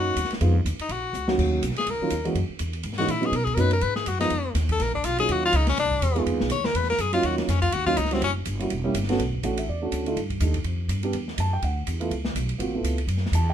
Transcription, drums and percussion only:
0.16 hi-hat pedal medium
0.16 ride medium
0.25 snare soft
0.30 snare soft
0.30 ride soft
0.41 ride medium
0.66 hi-hat pedal medium
0.66 ride medium
0.79 ride medium
0.89 ride medium
1.14 hi-hat pedal medium
1.28 snare medium
1.39 kick medium
1.39 crash medium
1.63 hi-hat pedal medium
1.63 ride medium
1.71 snare soft
1.76 snare soft
1.76 ride soft
1.87 ride medium
2.10 hi-hat pedal medium
2.10 ride medium
2.25 ride soft
2.35 ride medium
2.59 hi-hat pedal medium
2.59 ride medium
2.73 ride soft
2.83 ride medium
2.93 snare soft
2.98 snare soft
2.98 ride soft
3.08 hi-hat pedal medium
3.08 ride medium
3.23 ride soft
3.33 ride medium
3.47 kick medium
3.47 ride soft
3.57 hi-hat pedal medium
3.57 ride medium
3.71 ride medium
3.81 ride medium
3.96 snare soft
4.06 hi-hat pedal medium
4.06 ride medium
4.20 snare soft
4.20 ride soft
4.30 ride medium
4.55 snare soft
4.55 hi-hat pedal medium
4.55 ride medium
4.69 kick medium
4.69 ride medium
4.80 snare soft
4.80 ride medium
4.94 kick medium
5.04 hi-hat pedal medium
5.04 ride medium
5.18 ride soft
5.29 ride medium
5.53 hi-hat pedal soft
5.53 ride medium
5.67 snare medium
5.67 ride soft
5.77 snare soft
5.77 ride medium
5.91 kick medium
6.02 hi-hat pedal medium
6.02 ride medium
6.16 ride soft
6.26 ride medium
6.40 snare medium
6.50 hi-hat pedal medium
6.50 ride medium
6.64 snare medium
6.75 ride medium
6.83 snare soft
6.91 snare soft
6.98 hi-hat pedal medium
6.98 ride medium
7.13 ride medium
7.23 ride medium
7.38 snare soft
7.38 ride soft
7.49 snare soft
7.49 hi-hat pedal medium
7.49 ride medium
7.62 kick medium
7.62 ride medium
7.72 ride medium
7.87 kick soft
7.97 hi-hat pedal medium
7.97 ride medium
8.05 snare soft
8.11 snare soft
8.11 ride soft
8.22 ride medium
8.45 hi-hat pedal medium
8.45 ride medium
8.60 ride soft
8.70 ride medium
8.95 hi-hat pedal medium
8.95 ride medium
9.03 snare soft
9.09 snare soft
9.09 ride medium
9.19 ride medium
9.33 kick soft
9.43 hi-hat pedal medium
9.43 ride medium
9.57 ride medium
9.92 hi-hat pedal medium
9.92 ride medium
10.06 ride soft
10.17 ride medium
10.30 kick medium
10.30 ride soft
10.40 hi-hat pedal medium
10.40 ride medium
10.54 kick medium
10.54 ride soft
10.64 ride medium
10.89 hi-hat pedal medium
10.89 ride medium
11.03 ride soft
11.13 ride medium
11.28 snare soft
11.38 hi-hat pedal medium
11.38 ride medium
11.62 ride medium
11.87 hi-hat pedal medium
11.87 ride medium
12.01 ride soft
12.11 ride medium
12.25 snare medium
12.36 hi-hat pedal medium
12.36 ride medium
12.49 ride medium
12.60 ride medium
12.84 hi-hat pedal medium
12.84 ride medium
12.98 ride soft
13.08 ride medium
13.17 snare soft
13.26 snare soft
13.33 hi-hat pedal medium
13.33 ride medium

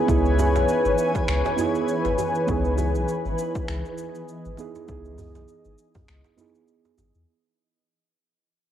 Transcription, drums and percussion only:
0.08 kick loud
0.08 shaker soft
0.25 shaker soft
0.39 djembe tone medium
0.39 shaker medium
0.56 djembe slap medium
0.56 shaker soft
0.69 shaker soft
0.85 shaker soft
0.98 shaker medium
1.15 kick loud
1.15 djembe slap medium
1.15 shaker soft
1.28 finger snap medium
1.28 shaker soft
1.45 djembe slap medium
1.45 shaker soft
1.58 djembe tone medium
1.58 shaker medium
1.75 shaker soft
1.88 shaker soft
2.05 djembe slap medium
2.05 shaker soft
2.18 djembe tone medium
2.18 shaker medium
2.35 shaker soft
2.48 kick loud
2.48 shaker soft
2.65 shaker soft
2.78 djembe tone medium
2.78 shaker medium
2.95 shaker soft
3.09 shaker soft
3.25 shaker soft
3.39 shaker medium
3.55 kick loud
3.55 shaker soft
3.68 finger snap medium
3.68 shaker soft
3.85 shaker soft
3.98 shaker medium
4.15 shaker soft
4.28 shaker soft
4.45 shaker soft
4.57 djembe slap soft
4.57 shaker medium
4.75 djembe slap soft
4.75 shaker soft
4.88 kick loud
4.88 shaker soft
5.05 shaker soft
5.18 djembe tone medium
5.18 djembe bass medium
5.18 shaker medium
5.35 djembe slap medium
5.35 shaker soft
5.48 shaker soft
5.65 shaker soft
5.78 shaker medium
5.95 kick loud
5.95 djembe slap soft
5.95 djembe bass medium
5.95 shaker soft
6.08 finger snap medium
6.08 shaker soft
6.24 djembe slap medium
6.24 shaker soft
6.38 djembe tone medium
6.38 shaker medium
6.55 shaker soft
6.68 shaker soft
6.85 djembe slap soft
6.85 shaker soft
6.98 djembe tone medium
6.98 shaker medium
7.15 shaker soft

